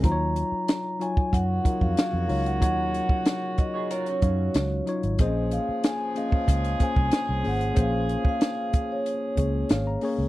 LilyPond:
<<
  \new Staff \with { instrumentName = "Vibraphone" } { \time 4/4 \key ees \dorian \tempo 4 = 93 bes''4. aes''8 ges''8. f''16 f''8. ges''16 | ges''4. ees''8 des''4. r8 | ees''8 f''8 aes''8 f''4 aes''4 ges''8 | f''8. f''4 des''4.~ des''16 r8 | }
  \new Staff \with { instrumentName = "Clean electric guitar" } { \time 4/4 \key ees \dorian r1 | r4. r16 <aes' des''>16 <f' bes'>16 <des' ges'>4. r16 | r1 | r1 | }
  \new Staff \with { instrumentName = "Tine electric piano" } { \time 4/4 \key ees \dorian << { r1 | r1 | r1 | r2. f''16 bes''8. | } \\ { <ges ees' f' c'' des''>4 r8 <ges ees' f' des''>8 r8 <ges ees' f' bes'>8 r8 <ges ees' f' des''>8 | <ges ees' ges' des''>4 r4. <ges ees' des'' f''>8 r8 <ges ees' f' des''>8 | <bes c' des' aes' c''>4 r8 <bes des' aes' ees''>8 r8 <bes des' aes' c''>8 r8 <bes des' aes' c''>8 | <bes des' aes' c''>4 r4. <bes des' aes' des''>8 r8 <bes des' aes' des''>8 | } >> }
  \new Staff \with { instrumentName = "Horn section" } { \time 4/4 \key ees \dorian r2 <des bes ges'>2~ | <des bes ges'>2.~ <des bes ges'>8 r8 | <f des' aes'>1~ | <f des' aes'>2.~ <f des' aes'>8 r8 | }
  \new Staff \with { instrumentName = "Fingered electric bass" } { \clef bass \time 4/4 \key ees \dorian ees,8. r4 r16 ges,8 r16 f,16 r16 f,16 des,8 | ees,8. r4. r16 ges,8 des,8 r16 aes,,16 | bes,,8. r4 r16 des,8 r16 c,16 r16 c,16 aes,,8 | bes,,8. r4. r16 des,8 aes,,8 r16 des,16 | }
  \new DrumStaff \with { instrumentName = "Drums" } \drummode { \time 4/4 <hh bd>8 hh8 <hh sn>8 hh16 bd16 <hh bd>8 <hh bd>16 bd16 <hh sn>8 hho16 hh16 | <hh bd>8 hh16 bd16 <hh sn>8 <hh bd>8 hh16 hh16 <hh bd>8 <hh sn>8 hh16 hh16 | <hh bd>8 hh8 <hh sn>8 hh16 bd16 <hh bd>16 hh16 <hh bd>16 bd16 <hh sn>8 hho16 hh16 | <hh bd>8 hh16 bd16 <hh sn>8 <hh bd>8 hh8 <hh bd>8 <hh sn>8 hho8 | }
>>